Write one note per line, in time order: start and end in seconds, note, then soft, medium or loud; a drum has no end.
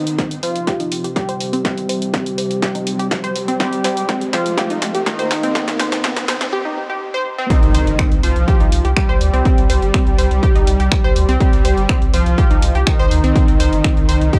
0.00 6.53 C3 medium
0.00 0.34 D#3 medium
0.00 6.53 C4 medium
0.00 0.34 D#4 loud
0.00 riser medium
0.07 closed hi-hat medium
0.18 0.26 C4 medium
0.18 kick loud
0.18 snare soft
0.18 closed hi-hat medium
0.31 closed hi-hat medium
0.43 1.07 F3 medium
0.43 1.07 F4 loud
0.43 0.50 C5 medium
0.43 open hi-hat medium
0.56 closed hi-hat medium
0.67 0.75 G4 loud
0.67 kick loud
0.67 snare medium
0.67 closed hi-hat medium
0.80 0.90 D#4 medium
0.80 closed hi-hat medium
0.92 open hi-hat loud
1.04 1.11 G4 medium
1.04 closed hi-hat medium
1.16 3.51 G3 medium
1.16 3.51 G4 loud
1.16 kick loud
1.16 snare medium
1.16 closed hi-hat medium
1.29 1.36 C5 loud
1.29 closed hi-hat medium
1.40 open hi-hat medium
1.53 1.60 C4 loud
1.53 closed hi-hat medium
1.65 1.72 C4 loud
1.65 kick loud
1.65 snare medium
1.65 closed hi-hat medium
1.78 closed hi-hat medium
1.89 1.94 C5 medium
1.89 open hi-hat loud
2.02 closed hi-hat medium
2.14 2.21 C4 medium
2.14 kick loud
2.14 snare medium
2.14 closed hi-hat medium
2.26 closed hi-hat medium
2.38 2.45 C5 medium
2.38 open hi-hat medium
2.51 closed hi-hat medium
2.62 2.70 G4 loud
2.62 kick loud
2.62 snare medium
2.62 closed hi-hat medium
2.75 2.85 D#4 medium
2.75 closed hi-hat medium
2.87 open hi-hat loud
2.99 3.06 G4 medium
2.99 closed hi-hat medium
3.11 kick loud
3.11 snare medium
3.11 closed hi-hat medium
3.24 3.31 C5 loud
3.24 closed hi-hat medium
3.36 open hi-hat medium
3.48 3.55 C4 loud
3.48 closed hi-hat medium
3.60 4.24 G3 medium
3.60 3.67 C4 loud
3.60 4.24 G4 loud
3.60 kick loud
3.60 snare medium
3.60 closed hi-hat medium
3.73 closed hi-hat medium
3.84 3.89 C5 medium
3.84 snare medium
3.84 open hi-hat loud
3.97 closed hi-hat medium
4.09 4.16 C4 medium
4.09 kick loud
4.09 snare medium
4.09 closed hi-hat medium
4.21 closed hi-hat medium
4.33 4.97 F3 medium
4.33 4.97 F4 loud
4.33 4.41 C5 medium
4.33 snare medium
4.33 open hi-hat loud
4.46 closed hi-hat medium
4.58 4.65 G4 loud
4.58 kick loud
4.58 snare medium
4.58 closed hi-hat medium
4.70 4.81 D#4 medium
4.70 closed hi-hat medium
4.82 snare medium
4.82 open hi-hat loud
4.95 5.01 G4 medium
4.95 closed hi-hat medium
5.06 6.53 D#3 medium
5.06 6.53 D#4 loud
5.06 kick loud
5.06 snare medium
5.06 closed hi-hat medium
5.19 5.26 C5 loud
5.19 closed hi-hat medium
5.31 snare medium
5.31 open hi-hat medium
5.43 5.50 C4 loud
5.43 closed hi-hat medium
5.55 5.63 C4 loud
5.55 kick loud
5.55 snare medium
5.55 closed hi-hat medium
5.68 snare medium
5.68 closed hi-hat medium
5.79 5.84 C5 medium
5.79 snare medium
5.79 open hi-hat loud
5.92 snare medium
5.92 closed hi-hat medium
6.04 6.11 C4 medium
6.04 kick loud
6.04 snare loud
6.04 closed hi-hat medium
6.16 snare medium
6.16 closed hi-hat medium
6.28 6.36 C5 medium
6.28 snare loud
6.28 open hi-hat loud
6.41 snare medium
6.41 closed hi-hat medium
6.53 6.60 G4 loud
6.65 6.76 D#4 medium
6.90 6.97 G4 medium
7.14 7.21 C5 loud
7.38 7.45 C4 loud
7.50 8.14 D#3 loud
7.50 8.14 D#3 medium
7.50 7.58 C4 loud
7.50 8.14 D#4 loud
7.50 kick loud
7.50 closed hi-hat soft
7.50 impact medium
7.63 7.72 C2 medium
7.63 closed hi-hat soft
7.75 7.84 C2 loud
7.75 7.79 C5 medium
7.75 open hi-hat loud
7.87 7.96 G1 medium
7.87 closed hi-hat soft
7.99 8.06 C4 medium
7.99 finger snap loud
7.99 kick loud
7.99 closed hi-hat soft
8.12 8.21 C2 medium
8.12 closed hi-hat soft
8.23 8.33 C2 loud
8.23 8.87 F3 loud
8.23 8.87 F3 medium
8.23 8.87 F4 loud
8.23 8.31 C5 medium
8.23 open hi-hat medium
8.36 8.45 C2 medium
8.36 closed hi-hat soft
8.48 8.55 G4 loud
8.48 kick loud
8.48 closed hi-hat soft
8.60 8.69 C2 medium
8.60 8.71 D#4 medium
8.60 closed hi-hat soft
8.72 8.82 C2 loud
8.72 open hi-hat loud
8.85 8.94 C2 medium
8.85 8.92 G4 medium
8.85 closed hi-hat soft
8.96 11.31 G3 medium
8.96 11.31 G3 loud
8.96 11.31 G4 loud
8.96 finger snap loud
8.96 kick loud
8.96 closed hi-hat soft
9.09 9.18 C2 medium
9.09 9.16 C5 loud
9.21 9.30 D2 loud
9.21 open hi-hat medium
9.34 9.42 C2 medium
9.34 9.40 C4 loud
9.34 closed hi-hat soft
9.45 9.53 C4 loud
9.45 kick loud
9.45 closed hi-hat soft
9.58 9.67 C2 medium
9.58 closed hi-hat soft
9.70 9.79 C2 loud
9.70 9.74 C5 medium
9.70 open hi-hat loud
9.82 9.91 G1 medium
9.82 closed hi-hat soft
9.94 10.02 C4 medium
9.94 finger snap loud
9.94 kick loud
9.94 closed hi-hat soft
10.07 10.16 C2 medium
10.07 closed hi-hat soft
10.18 10.28 C2 loud
10.18 10.26 C5 medium
10.18 open hi-hat loud
10.31 10.40 C2 medium
10.31 closed hi-hat soft
10.43 10.50 G4 loud
10.43 kick loud
10.43 closed hi-hat soft
10.55 10.64 C2 medium
10.55 10.66 D#4 medium
10.55 closed hi-hat soft
10.67 10.77 C2 medium
10.67 open hi-hat loud
10.80 10.89 C2 medium
10.80 10.87 G4 medium
10.80 closed hi-hat soft
10.92 finger snap loud
10.92 kick loud
10.92 closed hi-hat soft
11.04 11.13 C2 medium
11.04 11.11 C5 loud
11.16 11.26 D2 loud
11.16 open hi-hat medium
11.29 11.38 C2 loud
11.29 11.36 C4 loud
11.29 closed hi-hat soft
11.40 12.04 G3 loud
11.40 12.04 G3 medium
11.40 11.48 C4 loud
11.40 12.04 G4 loud
11.40 kick loud
11.40 closed hi-hat soft
11.53 11.62 C2 medium
11.53 closed hi-hat soft
11.65 11.74 C2 loud
11.65 11.69 C5 medium
11.65 open hi-hat loud
11.77 11.86 G1 medium
11.77 closed hi-hat soft
11.89 11.97 C4 medium
11.89 finger snap loud
11.89 kick loud
11.89 closed hi-hat soft
12.02 12.11 C2 medium
12.02 closed hi-hat soft
12.14 12.23 C2 loud
12.14 12.77 F3 loud
12.14 12.77 F3 medium
12.14 12.77 F4 loud
12.14 12.21 C5 medium
12.14 open hi-hat loud
12.26 12.35 C2 medium
12.26 closed hi-hat soft
12.38 12.45 G4 loud
12.38 kick loud
12.38 closed hi-hat soft
12.51 12.60 C2 medium
12.51 12.61 D#4 medium
12.51 closed hi-hat soft
12.62 12.72 C2 loud
12.62 open hi-hat loud
12.75 12.84 C2 medium
12.75 12.82 G4 medium
12.75 closed hi-hat soft
12.87 14.39 D#3 medium
12.87 14.39 D#3 loud
12.87 14.39 D#4 loud
12.87 finger snap loud
12.87 kick loud
12.87 closed hi-hat soft
12.99 13.08 C2 medium
12.99 13.06 C5 loud
13.11 13.21 D2 loud
13.11 open hi-hat medium
13.24 13.33 C2 loud
13.24 13.31 C4 loud
13.24 closed hi-hat soft
13.36 13.43 C4 loud
13.36 kick loud
13.36 closed hi-hat soft
13.48 13.57 C2 medium
13.48 closed hi-hat soft
13.60 13.70 C2 loud
13.60 13.64 C5 medium
13.60 open hi-hat loud
13.73 13.81 G1 medium
13.73 closed hi-hat soft
13.84 13.92 C4 medium
13.84 finger snap loud
13.84 kick loud
13.84 closed hi-hat soft
13.97 14.06 C2 medium
13.97 closed hi-hat soft
14.09 14.18 C2 loud
14.09 14.16 C5 medium
14.09 open hi-hat loud
14.21 14.30 C2 loud
14.21 closed hi-hat soft
14.33 14.39 G4 loud
14.33 kick loud
14.33 closed hi-hat soft